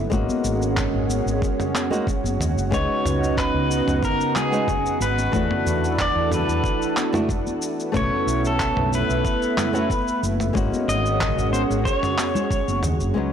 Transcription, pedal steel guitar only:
2.74 3.38 C#5 medium
3.38 4.04 B4 medium
4.05 4.37 A#4 medium
4.37 5.03 G#4 medium
5.02 6.01 B4 medium
6.02 6.34 D5 loud
6.34 6.94 B4 medium
7.97 8.42 C#5 loud
8.47 8.95 A4 medium
8.95 10.20 B4 medium
10.89 11.52 D#5 loud
11.53 11.62 C5 medium
11.85 12.79 C#5 medium

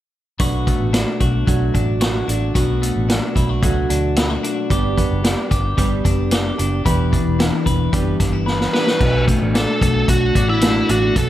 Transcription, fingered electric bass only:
0.40 0.74 B1 medium
0.80 1.03 A1 medium
1.21 1.44 B1 medium
1.47 1.70 B1 medium
1.75 2.21 A1 medium
2.28 2.51 A1 medium
2.55 2.90 B1 medium
2.96 3.19 A1 medium
3.36 3.63 B1 medium
3.63 3.86 C#2 medium
3.90 4.36 D2 medium
4.70 5.05 G1 medium
5.11 5.34 F#1 medium
5.51 5.74 G1 medium
5.78 6.01 G1 medium
6.05 6.51 F#1 medium
6.59 6.82 F#1 medium
6.86 7.20 E1 medium
7.26 7.49 E1 medium
7.66 7.89 E1 medium
7.93 8.16 F#1 medium
8.20 8.66 G1 medium
9.01 9.35 B1 medium
9.41 9.64 A1 medium
9.81 10.04 B1 medium
10.08 10.31 B1 medium
10.35 10.81 A1 medium
10.89 11.12 A1 medium
11.16 11.29 B1 medium

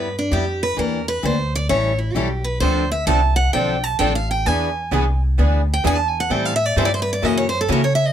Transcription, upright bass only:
0.00 0.30 G2 medium
0.31 0.76 F2 medium
0.78 1.22 E2 medium
1.23 1.68 D2 medium
1.70 2.14 A1 medium
2.15 2.60 B1 medium
2.60 3.06 D2 medium
3.07 3.52 C2 medium
3.53 3.98 B1 medium
4.00 4.45 A1 medium
4.46 4.91 E2 medium
4.91 5.36 C2 medium
5.39 5.83 D2 medium
5.84 6.29 E2 medium
6.30 6.75 A2 medium
6.76 7.21 G2 medium
7.22 7.67 F#2 medium
7.69 8.13 C#3 medium

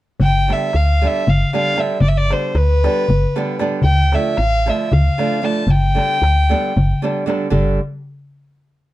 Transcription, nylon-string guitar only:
0.48 0.69 D3 medium
0.48 0.70 G3 soft
0.48 0.70 B3 soft
0.48 0.70 D4 medium
1.02 1.23 D3 medium
1.02 1.23 G3 soft
1.02 1.24 B3 soft
1.02 1.24 D4 medium
1.53 1.74 D3 medium
1.53 1.74 G3 medium
1.53 1.74 B3 medium
1.53 1.75 D4 medium
1.76 1.97 D3 medium
1.76 1.97 G3 medium
1.76 1.98 B3 soft
1.76 1.98 D4 medium
2.30 2.51 D3 medium
2.30 2.52 G3 soft
2.30 2.52 B3 medium
2.30 2.52 D4 medium
2.84 3.05 D3 medium
2.84 3.05 G3 medium
2.84 3.06 B3 medium
2.84 3.06 D4 medium
3.36 3.56 D3 medium
3.36 3.56 G3 medium
3.36 3.56 B3 medium
3.36 3.57 D4 medium
3.59 3.80 D3 medium
3.59 3.80 G3 medium
3.59 3.80 B3 medium
3.59 3.81 D4 medium
4.13 4.34 D3 medium
4.13 4.34 F3 medium
4.13 4.35 A3 medium
4.13 4.35 D4 medium
4.66 4.88 D3 medium
4.66 4.88 F3 soft
4.66 4.88 A3 soft
4.66 4.89 D4 medium
5.18 5.39 D3 medium
5.18 5.39 F3 medium
5.18 5.40 A3 medium
5.18 5.40 D4 medium
5.41 5.63 D3 medium
5.41 5.63 F3 soft
5.41 5.63 A3 medium
5.41 5.63 D4 medium
5.95 6.17 D3 medium
5.95 6.17 G3 soft
5.95 6.18 B3 medium
5.95 6.18 D4 medium
6.49 6.71 D3 medium
6.49 6.72 G3 soft
6.49 6.72 B3 medium
6.49 6.72 D4 medium
7.02 7.23 D3 medium
7.02 7.23 G3 medium
7.02 7.24 B3 medium
7.02 7.24 D4 medium
7.26 7.47 D3 medium
7.26 7.47 G3 medium
7.26 7.47 B3 medium
7.26 7.47 D4 medium
7.50 7.79 D3 medium
7.50 7.79 G3 medium
7.50 7.79 B3 medium
7.50 7.79 D4 medium

